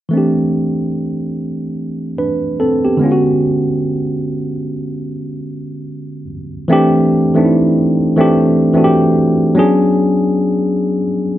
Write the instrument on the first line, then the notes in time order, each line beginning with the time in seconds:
tine electric piano
0.09 E3 A3
0.13 C4 D4
0.18 G4
2.18 D4 B4
2.60 C4 A4
2.85 B3 G4
2.97 D3 G#3 B3
3.04 C#4 F4
3.12 F#4
6.68 E3 A3 C4 D4
6.73 G4
7.34 E3 A3 C4 D4
7.39 D#4
7.45 E4
8.16 E3 A3 C4 D4
8.21 G4
8.73 E3 A3 C4 D4
8.77 F#4
8.84 G4
9.55 F#3 B3 C#4 D4
9.59 G#4